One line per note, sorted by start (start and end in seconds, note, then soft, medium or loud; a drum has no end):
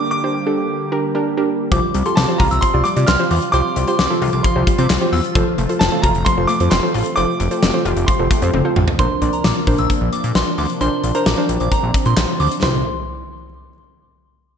0.00 1.68 D3 medium
0.00 5.31 G3 medium
0.00 1.68 A#3 medium
0.00 0.19 D4 medium
0.00 0.19 G4 medium
0.00 1.68 G4 medium
0.00 0.19 A#4 medium
0.11 0.99 D6 loud
0.24 0.44 D4 medium
0.24 0.44 G4 medium
0.24 0.44 C5 medium
0.47 0.86 D4 medium
0.47 0.86 G4 medium
0.47 0.86 A4 medium
0.92 1.12 D4 medium
0.92 1.12 G4 medium
0.92 1.12 A#4 loud
1.15 1.35 D4 medium
1.15 1.35 G4 medium
1.15 1.35 A#4 loud
1.37 1.67 D4 medium
1.37 1.67 G4 medium
1.37 1.67 A#4 loud
1.72 1.80 C2 loud
1.72 5.32 C3 medium
1.72 1.86 F3 medium
1.72 8.95 F3 medium
1.72 2.01 F4 medium
1.72 7.13 F4 medium
1.72 2.01 G4 medium
1.72 2.01 C5 loud
1.72 1.89 D6 loud
1.72 kick loud
1.72 closed hi-hat medium
1.94 2.03 C2 loud
1.94 2.09 G3 medium
1.94 closed hi-hat medium
2.06 2.25 F4 medium
2.06 2.25 G4 medium
2.06 2.25 A4 medium
2.06 2.14 C6 medium
2.06 closed hi-hat medium
2.15 2.26 C2 loud
2.15 2.32 C4 medium
2.15 2.40 A5 medium
2.15 2.25 D6 medium
2.15 snare loud
2.28 2.68 F4 medium
2.28 2.68 G4 medium
2.28 2.68 C5 medium
2.38 2.49 C2 loud
2.38 2.54 F4 loud
2.38 2.62 A#5 medium
2.38 kick medium
2.38 open hi-hat medium
2.51 2.60 C2 loud
2.51 2.68 E6 medium
2.51 closed hi-hat medium
2.61 2.77 F3 medium
2.61 2.85 C6 loud
2.61 kick medium
2.61 closed hi-hat medium
2.74 2.83 C2 loud
2.74 2.94 F4 medium
2.74 2.94 G4 medium
2.74 2.94 D5 medium
2.84 3.00 G3 medium
2.84 3.08 D6 medium
2.84 2.94 D6 medium
2.84 closed hi-hat medium
2.96 3.05 C3 loud
2.96 3.16 F4 medium
2.96 3.16 G4 medium
2.96 3.16 D5 medium
2.96 closed hi-hat medium
3.07 3.17 C2 medium
3.07 3.22 C4 medium
3.07 3.17 C6 medium
3.07 3.54 F6 loud
3.07 snare loud
3.07 clap medium
3.19 3.49 F4 medium
3.19 3.49 G4 medium
3.19 3.49 C5 medium
3.31 3.39 E2 loud
3.31 3.45 F4 medium
3.31 3.39 D6 medium
3.31 open hi-hat medium
3.42 closed hi-hat medium
3.52 3.62 C2 loud
3.52 3.68 F3 medium
3.52 3.83 F4 medium
3.52 3.83 G4 medium
3.52 3.83 C5 medium
3.52 3.70 C6 loud
3.52 4.46 D6 loud
3.52 closed hi-hat medium
3.76 3.85 C2 loud
3.76 3.91 G3 medium
3.76 closed hi-hat medium
3.87 4.07 F4 medium
3.87 4.07 G4 medium
3.87 4.07 C5 medium
3.87 3.96 C6 medium
3.87 closed hi-hat medium
3.99 4.08 C2 loud
3.99 4.13 C4 medium
3.99 4.07 D6 medium
3.99 snare loud
4.10 4.50 F4 medium
4.10 4.50 G4 medium
4.10 4.50 A4 loud
4.22 4.30 C2 loud
4.22 4.36 F4 loud
4.22 open hi-hat medium
4.33 4.42 C2 medium
4.33 4.41 D6 medium
4.33 closed hi-hat medium
4.43 4.59 F3 medium
4.43 5.08 C6 medium
4.43 4.53 C6 medium
4.43 kick medium
4.43 closed hi-hat medium
4.56 4.64 C2 loud
4.56 4.75 F4 medium
4.56 4.75 G4 medium
4.56 4.75 C5 medium
4.67 4.82 G3 medium
4.67 kick loud
4.67 closed hi-hat medium
4.78 4.87 C3 loud
4.78 4.98 F4 medium
4.78 4.98 G4 medium
4.78 4.98 C5 medium
4.78 4.87 D6 medium
4.78 closed hi-hat medium
4.90 4.99 C2 loud
4.90 5.04 C4 medium
4.90 snare loud
4.90 clap medium
5.01 5.31 F4 medium
5.01 5.31 G4 medium
5.01 5.31 C5 loud
5.13 5.21 E2 loud
5.13 5.27 F4 medium
5.13 5.21 E6 medium
5.13 open hi-hat medium
5.24 closed hi-hat medium
5.35 5.44 F1 loud
5.35 8.95 C3 medium
5.35 5.50 F3 medium
5.35 8.95 A3 medium
5.35 5.65 F4 medium
5.35 5.65 A4 medium
5.35 5.65 C5 loud
5.35 kick loud
5.35 closed hi-hat medium
5.58 5.67 F1 loud
5.58 5.73 A3 medium
5.58 closed hi-hat medium
5.69 5.89 F4 medium
5.69 5.89 A4 medium
5.69 5.89 C5 medium
5.69 closed hi-hat medium
5.79 5.90 F1 loud
5.79 5.95 C4 medium
5.79 6.03 A5 medium
5.79 snare loud
5.92 6.32 F4 medium
5.92 6.32 A4 medium
5.92 6.32 C5 medium
6.02 6.12 F1 loud
6.02 6.18 F4 loud
6.02 6.24 A#5 medium
6.02 kick medium
6.02 closed hi-hat medium
6.15 6.24 F1 loud
6.15 closed hi-hat medium
6.25 6.41 F3 medium
6.25 6.49 C6 loud
6.25 kick medium
6.25 closed hi-hat medium
6.38 6.46 F1 medium
6.38 6.57 F4 medium
6.38 6.57 A4 medium
6.38 6.57 C5 medium
6.47 6.63 A3 medium
6.47 6.72 D6 loud
6.47 closed hi-hat medium
6.60 6.69 F2 medium
6.60 6.80 F4 medium
6.60 6.80 A4 medium
6.60 6.80 C5 medium
6.60 closed hi-hat medium
6.70 6.80 F1 loud
6.70 6.86 C4 medium
6.70 7.18 C6 loud
6.70 snare loud
6.70 clap medium
6.83 7.13 F4 medium
6.83 7.13 A4 medium
6.83 7.13 C5 medium
6.94 7.03 A1 loud
6.94 7.09 F4 medium
6.94 open hi-hat medium
7.06 closed hi-hat medium
7.16 7.26 F1 loud
7.16 7.32 F3 medium
7.16 7.47 F4 medium
7.16 8.97 G4 medium
7.16 7.47 A4 medium
7.16 7.47 C5 medium
7.16 8.10 D6 loud
7.16 closed hi-hat medium
7.40 7.49 F1 loud
7.40 7.54 A3 medium
7.40 closed hi-hat medium
7.51 7.71 F4 medium
7.51 7.71 A4 medium
7.51 7.71 C5 medium
7.51 closed hi-hat medium
7.62 7.71 F1 loud
7.62 7.77 C4 medium
7.62 snare loud
7.74 8.13 F4 medium
7.74 8.13 A4 medium
7.74 8.13 C5 loud
7.85 7.94 F1 loud
7.85 8.00 F4 loud
7.85 closed hi-hat medium
7.97 8.05 F1 loud
7.97 closed hi-hat medium
8.06 8.23 F3 medium
8.06 8.71 C6 medium
8.06 kick medium
8.06 closed hi-hat medium
8.19 8.28 F1 loud
8.19 8.39 F4 medium
8.19 8.39 A4 medium
8.19 8.39 C5 medium
8.31 8.45 A3 medium
8.31 kick loud
8.31 closed hi-hat medium
8.42 8.51 F2 loud
8.42 8.62 F4 medium
8.42 8.62 A4 medium
8.42 8.62 C5 medium
8.42 closed hi-hat medium
8.53 8.62 F1 loud
8.53 8.68 C4 medium
8.53 high tom medium
8.65 8.94 F4 medium
8.65 8.94 A4 medium
8.65 8.94 C5 loud
8.76 8.85 A1 medium
8.76 8.91 F4 medium
8.76 mid tom loud
8.88 floor tom loud
8.99 9.08 A#1 loud
8.99 12.59 C3 medium
8.99 12.59 F3 medium
8.99 10.79 A#3 medium
8.99 12.59 D4 medium
8.99 9.19 D4 medium
8.99 9.19 A#4 medium
8.99 9.19 C5 loud
8.99 9.16 C6 loud
8.99 kick loud
8.99 closed hi-hat medium
9.22 9.30 A#1 loud
9.22 9.61 D4 medium
9.22 9.61 A#4 medium
9.22 9.61 D5 loud
9.22 closed hi-hat medium
9.33 9.42 A#5 medium
9.33 closed hi-hat medium
9.44 9.53 A#1 loud
9.44 9.53 D6 medium
9.44 snare loud
9.67 9.76 A#1 loud
9.67 10.46 D4 medium
9.67 10.46 A#4 medium
9.67 10.46 C5 loud
9.67 kick medium
9.67 open hi-hat medium
9.78 9.87 A#1 loud
9.78 9.96 E6 medium
9.78 closed hi-hat medium
9.90 kick medium
9.90 closed hi-hat medium
10.01 10.10 A#1 medium
10.13 10.21 D6 medium
10.13 closed hi-hat medium
10.24 10.33 A#2 medium
10.24 closed hi-hat medium
10.35 10.44 A#1 loud
10.35 10.44 C6 medium
10.35 snare loud
10.58 10.67 D2 loud
10.58 10.67 D6 medium
10.58 open hi-hat medium
10.70 closed hi-hat medium
10.81 10.89 A#1 loud
10.81 12.61 C4 medium
10.81 11.10 D4 medium
10.81 11.10 A#4 medium
10.81 11.10 C5 loud
10.81 10.98 C6 loud
10.81 closed hi-hat medium
11.04 11.12 A#1 loud
11.04 closed hi-hat medium
11.15 11.35 D4 medium
11.15 11.35 A#4 medium
11.15 11.35 C5 loud
11.15 11.23 A#5 medium
11.15 closed hi-hat medium
11.26 11.35 A#1 loud
11.26 11.35 D6 medium
11.26 snare loud
11.38 12.16 D4 medium
11.38 12.17 A#4 medium
11.38 12.16 C5 loud
11.49 11.58 A#1 medium
11.49 closed hi-hat medium
11.60 11.69 A#1 medium
11.60 11.69 D6 medium
11.60 closed hi-hat medium
11.72 11.80 A#5 medium
11.72 kick medium
11.72 closed hi-hat medium
11.83 11.92 A#1 loud
11.94 kick loud
11.94 closed hi-hat medium
12.06 12.14 A#2 medium
12.06 12.14 C6 medium
12.06 closed hi-hat medium
12.17 12.26 A#1 medium
12.17 snare loud
12.17 clap medium
12.40 12.49 D2 loud
12.40 12.48 D6 medium
12.40 open hi-hat medium
12.51 closed hi-hat medium
12.63 12.84 C2 loud
12.63 12.84 C3 medium
12.63 12.84 E3 medium
12.63 12.84 G3 medium
12.63 12.84 E4 medium
12.63 12.84 G4 medium
12.63 12.84 C5 loud
12.63 12.84 C6 medium
12.63 snare loud
12.63 floor tom loud